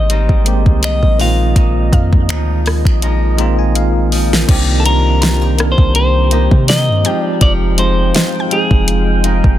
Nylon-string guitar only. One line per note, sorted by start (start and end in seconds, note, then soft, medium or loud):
0.00 1.19 G#2 medium
0.00 0.10 D#4 medium
0.10 1.27 G3 medium
0.10 1.28 C4 medium
0.10 1.56 D#4 medium
1.19 1.55 A#2 medium
1.56 4.48 A#2 medium
1.56 2.30 D#4 medium
2.29 3.01 F3 medium
2.29 3.02 G#3 medium
2.29 3.03 D#4 medium
3.02 4.11 F3 medium
3.02 4.57 G#3 medium
3.02 5.25 D#4 medium
4.12 4.57 F3 medium
4.48 7.13 C3 medium
4.85 6.30 A#3 medium
5.22 5.41 F4 medium
5.41 6.32 G4 medium
6.31 7.13 A#3 medium
6.31 7.44 D#4 medium
6.31 7.44 G4 medium
7.04 7.41 F3 medium
7.41 9.59 F3 medium
7.78 9.24 G#3 medium
8.14 8.33 F4 medium
9.24 9.59 G#3 medium
9.24 9.59 D#4 medium